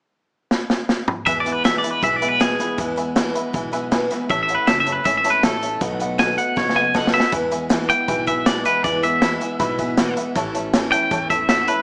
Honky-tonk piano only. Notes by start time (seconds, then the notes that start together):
1.27 B4 E5 G#5
1.46 B4 E5 G#5
1.64 B4 E5 G#5
1.84 B4 E5 G#5
2.03 B4 E5 G#5
2.22 B4 E5 G#5
2.41 B4 E5 G#5
2.60 B4 E5 B5
2.79 B4 E5 G#5
2.97 B4 E5 G#5
3.16 B4 E5 G#5
3.35 B4 E5 B5
3.55 B4 E5 G#5
3.73 B4 E5 G#5
3.92 B4 E5 G#5
4.11 B4 E5 G#5
4.30 C#5 E5 A5
4.50 C#5 E5 F#5
4.69 C#5 E5 A5
4.87 C#5 E5 A5
5.06 C#5 E5 G#5
5.25 C#5 E5 A5
5.44 C#5 E5 A5
5.63 C#5 E5 A5
5.81 B4 D#5 F#5
6.01 B4 D#5 F#5
6.19 B4 D#5 F#5
6.38 B4 D#5 F#5
6.57 B4 D#5 F#5
6.75 B4 D#5 F#5
6.94 B4 D#5 A5
7.13 B4 D#5 F#5
7.32 B4 E5 G#5
7.52 B4 E5 G#5
7.70 B4 E5 G#5
7.89 B4 E5 F#5
8.08 B4 E5 G#5
8.27 B4 E5 G#5
8.47 B4 E5 G#5
8.65 B4 E5 G#5
8.84 B4 E5 G#5
9.03 B4 E5 G#5
9.22 B4 E5 B5
9.41 B4 E5 G#5
9.59 B4 E5 B5
9.79 B4 E5 G#5
9.97 B4 E5 F#5
10.17 B4 E5 F#5
10.36 C#5 E5 A5
10.54 C#5 E5 A5
10.74 C#5 E5 G#5
10.92 C#5 E5 A5
11.11 C#5 E5 A5
11.30 C#5 E5 A5
11.49 C#5 E5 F#5
11.68 C#5 E5 A5